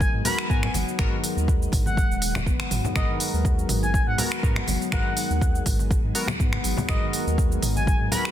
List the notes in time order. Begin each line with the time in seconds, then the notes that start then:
Already playing: F#3 G#3 B3 D#4 F#4 A#4
0.01 G#5, kick, cabasa
0.14 G#2
0.25 B3 F#4 A#4 B5, open hi-hat, low conga, cabasa
0.38 finger snap, cabasa
0.50 G#2 B3 F#4 A#4 G#5, kick, cabasa
0.63 G#5, finger snap, low conga
0.74 G#1 F#3, open hi-hat, high conga, cabasa
0.88 cabasa
0.99 G#1 B3 F#4 A#4, finger snap, kick, mid tom, cabasa
1.12 D#3
1.24 open hi-hat, cabasa
1.36 D#2, cabasa
1.48 G#3, kick, cabasa
1.61 F#3, cabasa
1.72 G#1, kick, mid tom, open hi-hat, low conga, cabasa
1.86 F#5, high conga, cabasa
1.97 kick, cabasa
2.10 D#1, cabasa
2.22 open hi-hat, cabasa
2.35 finger snap, high conga, low conga, cabasa
2.46 G#1 B3, kick, cabasa
2.60 finger snap, high conga, cabasa
2.71 G#1 F#3, mid tom, open hi-hat, cabasa
2.84 high conga, low conga, cabasa
2.96 G#1 G#3 B3 F#4 G#4 A#4 D#5, finger snap, kick, mid tom, cabasa
3.09 D#3
3.20 open hi-hat, cabasa
3.33 D#2, cabasa
3.45 G#3, kick, cabasa
3.58 F#3, cabasa
3.69 G#1 G#3, mid tom, open hi-hat, cabasa
3.83 G#5, high conga, cabasa
3.94 G#5, kick, cabasa
4.07 G#2 F#5
4.18 B3 F#4 A#4, open hi-hat, low conga, cabasa
4.32 finger snap, cabasa
4.43 G#2 B3 F#4 A#4, kick, cabasa
4.56 finger snap, low conga
4.67 G#1 F#3, open hi-hat, high conga, cabasa
4.82 cabasa
4.92 G#1 G#3 B3 F#4 A#4 F#5, finger snap, kick, mid tom, cabasa
5.06 D#3
5.17 open hi-hat, cabasa
5.30 D#2, cabasa
5.41 G#3, kick, cabasa
5.55 F#3, cabasa
5.66 G#1 G#3, kick, mid tom, open hi-hat, cabasa
5.79 high conga, cabasa
5.91 kick, cabasa
6.04 G#2
6.15 B3 F#4 A#4, open hi-hat, cabasa
6.28 finger snap, high conga, low conga, cabasa
6.40 G#2 B3, kick, cabasa
6.53 finger snap, high conga
6.64 G#1 F#3, open hi-hat, cabasa
6.77 high conga, low conga, cabasa
6.89 G#1 G#3 B3 F#4 A#4 D#5, finger snap, kick, mid tom, cabasa
7.02 D#3
7.13 open hi-hat, cabasa
7.27 D#2, cabasa
7.38 G#3, kick, cabasa
7.51 F#3, cabasa
7.62 G#1 G#3, mid tom, open hi-hat, cabasa
7.76 G#5, high conga, cabasa
7.87 G#5, kick, cabasa
8.00 G#2
8.12 B3 F#4 A#4 B5, open hi-hat, low conga, cabasa
8.25 finger snap, cabasa